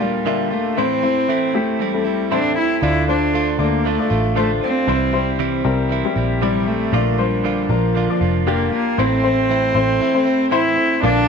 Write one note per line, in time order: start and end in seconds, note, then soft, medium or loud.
0.00 0.80 A#2 medium
0.00 0.54 G3 medium
0.00 0.26 A#3 medium
0.00 0.25 A#3 soft
0.00 0.26 D4 medium
0.00 0.25 D4 soft
0.00 0.26 F4 soft
0.00 0.26 F4 medium
0.00 0.21 G4 medium
0.00 0.80 D5 medium
0.00 0.79 F5 medium
0.25 0.51 A#2 medium
0.25 0.52 D3 medium
0.25 0.52 A#3 medium
0.25 0.70 A#3 medium
0.25 0.70 D4 medium
0.25 0.51 D4 medium
0.25 0.71 F4 medium
0.25 0.49 F4 medium
0.25 0.71 E5 medium
0.50 0.80 A3 medium
0.50 0.77 A#3 soft
0.50 0.78 D4 soft
0.50 0.77 F4 soft
0.77 1.03 A2 medium
0.77 1.50 A2 medium
0.77 1.03 E3 medium
0.77 1.00 A3 medium
0.77 1.03 A3 medium
0.77 1.00 C4 medium
0.77 1.03 C4 medium
0.77 1.57 C4 medium
0.77 1.00 E4 soft
0.77 1.01 E4 medium
0.77 1.00 C5 medium
1.03 1.47 A3 medium
1.03 1.28 A3 soft
1.03 1.47 C4 soft
1.03 1.28 C4 soft
1.03 1.28 E4 medium
1.03 1.47 E4 soft
1.03 1.47 C5 medium
1.28 1.54 A2 medium
1.28 1.54 E3 medium
1.28 1.55 A3 medium
1.28 1.53 C4 medium
1.28 1.52 E4 medium
1.53 1.88 A3 medium
1.53 1.83 A3 medium
1.53 1.79 A3 soft
1.53 1.88 C4 medium
1.53 1.80 C4 soft
1.53 1.79 E4 soft
1.53 1.88 E4 medium
1.53 1.88 G4 medium
1.79 2.05 E3 medium
1.79 2.34 G3 medium
1.79 2.06 A3 soft
1.79 2.05 C4 medium
1.79 2.03 E4 medium
1.94 2.26 A3 medium
1.94 2.26 C4 soft
1.94 2.26 E4 soft
1.94 2.26 A4 medium
2.04 2.30 A3 soft
2.04 2.31 C4 soft
2.04 2.31 E4 soft
2.30 2.56 A2 medium
2.30 2.57 E3 medium
2.30 2.76 A3 medium
2.30 2.57 A3 medium
2.30 2.76 C4 medium
2.30 2.56 C4 medium
2.30 2.57 D4 medium
2.30 2.76 E4 medium
2.30 2.55 E4 medium
2.30 2.76 C5 medium
2.56 2.81 A3 soft
2.56 2.83 C4 soft
2.56 2.82 E4 medium
2.56 2.81 E4 medium
2.82 3.56 D2 medium
2.82 3.08 D3 medium
2.82 3.55 D3 soft
2.82 3.04 A3 medium
2.82 3.08 A3 medium
2.82 3.05 D4 soft
2.82 3.08 D4 medium
2.82 3.07 E4 medium
2.82 3.05 F4 medium
2.82 3.06 F4 medium
2.82 3.05 D5 medium
3.08 3.52 A3 medium
3.08 3.33 A3 soft
3.08 3.52 D4 soft
3.08 3.34 D4 soft
3.08 3.56 D4 medium
3.08 3.34 F4 soft
3.08 3.52 F4 medium
3.08 3.53 C5 medium
3.34 3.59 D3 medium
3.34 3.60 A3 medium
3.34 3.59 D4 medium
3.34 3.58 F4 medium
3.59 3.96 D2 medium
3.59 3.93 A3 medium
3.59 3.84 A3 soft
3.59 3.88 A#3 medium
3.59 3.93 D4 medium
3.59 3.85 D4 soft
3.59 3.85 F4 soft
3.59 3.93 F4 medium
3.59 3.93 D5 medium
3.84 4.10 D3 soft
3.84 4.11 A3 medium
3.84 4.37 A3 medium
3.84 4.10 D4 medium
3.84 4.09 F4 medium
3.99 4.31 A3 medium
3.99 4.31 D4 medium
3.99 4.31 F4 medium
3.99 4.31 D5 medium
4.10 4.59 A1 medium
4.10 4.35 A3 soft
4.10 4.35 D4 soft
4.10 4.36 F4 soft
4.36 4.62 D3 medium
4.36 4.81 A3 medium
4.36 4.62 A3 medium
4.36 4.49 A3 medium
4.36 4.81 D4 medium
4.36 4.61 D4 medium
4.36 4.81 F4 medium
4.36 4.60 F4 medium
4.36 4.81 C5 medium
4.61 4.88 A3 soft
4.61 5.61 C4 medium
4.61 4.88 D4 soft
4.61 4.87 F4 soft
4.87 5.61 C2 medium
4.87 5.13 C3 medium
4.87 5.61 C3 soft
4.87 5.13 E3 medium
4.87 5.10 G3 medium
4.87 5.14 G3 medium
4.87 5.10 C4 medium
4.87 5.13 C4 medium
4.87 5.10 E4 soft
4.87 5.11 E4 medium
4.87 5.10 C5 medium
5.13 5.58 G3 medium
5.13 5.39 G3 soft
5.13 5.58 C4 soft
5.13 5.39 C4 soft
5.13 5.39 E4 soft
5.13 5.58 E4 soft
5.13 5.58 C5 medium
5.39 5.65 C3 medium
5.39 5.65 E3 medium
5.39 5.65 G3 medium
5.39 5.64 C4 medium
5.39 5.63 E4 medium
5.64 6.02 C2 medium
5.64 5.98 G3 medium
5.64 5.89 G3 soft
5.64 5.98 C4 medium
5.64 5.90 C4 soft
5.64 5.90 E4 soft
5.64 5.98 E4 medium
5.64 5.98 A#4 medium
5.89 6.15 E3 medium
5.89 6.16 G3 medium
5.89 6.16 C4 medium
5.89 6.14 E4 medium
6.05 6.36 G3 medium
6.05 6.37 C4 medium
6.05 6.37 E4 medium
6.05 6.37 G4 medium
6.15 6.89 A#1 medium
6.15 6.41 G3 soft
6.15 6.41 C4 soft
6.15 6.41 E4 soft
6.41 6.67 C3 medium
6.41 6.67 E3 medium
6.41 6.86 G3 medium
6.41 6.67 G3 medium
6.41 6.69 G3 medium
6.41 6.86 C4 medium
6.41 6.67 C4 medium
6.41 6.86 E4 medium
6.41 6.65 E4 medium
6.41 6.86 D5 medium
6.66 6.93 G3 soft
6.66 7.21 A3 medium
6.66 6.93 C4 soft
6.66 6.92 E4 soft
6.92 7.66 A#1 medium
6.92 7.18 A#2 medium
6.92 7.66 A#2 soft
6.92 7.18 D3 medium
6.92 7.15 A#3 medium
6.92 7.19 A#3 medium
6.92 7.15 D4 medium
6.92 7.18 D4 medium
6.92 7.15 F4 medium
6.92 7.17 F4 medium
6.92 7.15 D5 medium
7.18 7.73 G3 medium
7.18 7.63 A#3 medium
7.18 7.44 A#3 soft
7.18 7.63 D4 medium
7.18 7.44 D4 soft
7.18 7.44 F4 soft
7.18 7.63 F4 soft
7.18 7.63 C5 medium
7.44 7.70 A#2 medium
7.44 7.70 D3 medium
7.44 7.70 A#3 medium
7.44 7.69 D4 medium
7.44 7.68 F4 medium
7.69 8.07 A#1 medium
7.69 8.48 F3 medium
7.69 8.03 A#3 medium
7.69 7.95 A#3 soft
7.69 8.03 D4 medium
7.69 7.96 D4 soft
7.69 7.95 F4 soft
7.69 8.03 F4 medium
7.69 8.03 A#4 medium
7.95 8.21 D3 medium
7.95 8.21 A#3 medium
7.95 8.21 D4 medium
7.95 8.20 F4 medium
8.10 8.41 A#3 medium
8.10 8.41 D4 medium
8.10 8.42 F4 medium
8.10 8.42 D5 medium
8.21 8.69 F1 medium
8.21 8.46 A#3 soft
8.21 8.47 D4 soft
8.21 8.47 F4 soft
8.47 8.72 A#2 medium
8.47 8.73 D3 medium
8.47 8.91 A#3 medium
8.47 8.73 A#3 medium
8.47 8.71 A#3 medium
8.47 8.91 D4 medium
8.47 8.72 D4 medium
8.47 8.91 F4 medium
8.47 8.71 F4 medium
8.47 8.91 G4 medium
8.72 9.01 A#3 medium
8.72 8.99 A#3 soft
8.72 8.98 D4 soft
8.72 8.98 F4 soft
8.98 9.71 A1 medium
8.98 9.24 A2 medium
8.98 9.71 A2 soft
8.98 9.24 E3 medium
8.98 9.20 A3 medium
8.98 9.24 A3 medium
8.98 9.20 C4 medium
8.98 9.24 C4 medium
8.98 10.52 C4 loud
8.98 9.20 E4 medium
8.98 9.22 E4 medium
8.98 9.20 C5 medium
9.23 9.68 A3 medium
9.23 9.49 A3 soft
9.23 9.68 C4 soft
9.23 9.49 C4 soft
9.23 9.49 E4 medium
9.23 9.68 E4 medium
9.23 9.68 C5 medium
9.49 9.75 A2 medium
9.49 9.75 E3 medium
9.49 9.75 A3 medium
9.49 9.75 C4 medium
9.49 9.73 E4 medium
9.74 9.99 A1 medium
9.74 10.08 A3 medium
9.74 10.00 A3 soft
9.74 10.08 C4 medium
9.74 10.01 C4 soft
9.74 10.00 E4 soft
9.74 10.08 E4 medium
9.74 10.08 C5 medium
10.00 10.26 E3 medium
10.00 10.26 A3 medium
10.00 10.26 C4 medium
10.00 10.24 E4 medium
10.15 10.47 A3 medium
10.15 10.47 C4 medium
10.15 10.47 E4 medium
10.15 10.47 C5 medium
10.25 10.50 A3 soft
10.25 10.51 C4 soft
10.25 10.51 E4 medium
10.51 10.77 A2 medium
10.51 10.77 E3 medium
10.51 10.96 A3 medium
10.51 10.77 A3 medium
10.51 10.96 C4 medium
10.51 10.76 C4 medium
10.51 10.96 E4 medium
10.51 10.75 E4 medium
10.51 11.00 E4 medium
10.51 10.96 C5 medium
10.76 11.03 A3 soft
10.76 11.03 C4 soft
10.76 11.02 E4 soft
11.02 11.28 A#1 medium
11.02 11.28 A#2 medium
11.02 11.28 D3 medium
11.02 11.25 A#3 medium
11.02 11.28 A#3 medium
11.02 11.25 D4 medium
11.02 11.28 D4 medium
11.02 11.28 D4 loud
11.02 11.25 F4 medium
11.02 11.27 F4 medium
11.02 11.26 D5 medium